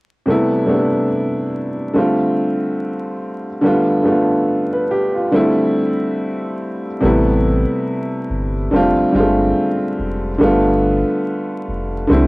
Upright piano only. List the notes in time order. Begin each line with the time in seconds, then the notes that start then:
0.26 C3 G3 A3 B3
0.31 E4
0.65 C3 G3 A3 B3
0.70 D4
1.94 D3 G3 A3 C4
1.98 F4
3.61 D3 G3 A3 B3
3.66 F4
4.03 D3 G3 A3 B3
4.08 F4
4.73 B4
4.91 G4
5.15 F4
5.32 D3 G3 A3 C4
5.36 E4
7.00 C3 G3 A3 B3
7.05 E4
8.71 D3 G3 A3 C4
8.76 F4
9.11 D3 G3 G#3 C4
9.16 F4
9.20 A3
10.38 D3 G3 A3 B3
10.43 F4
12.07 D3 G3 A3 C4
12.12 E4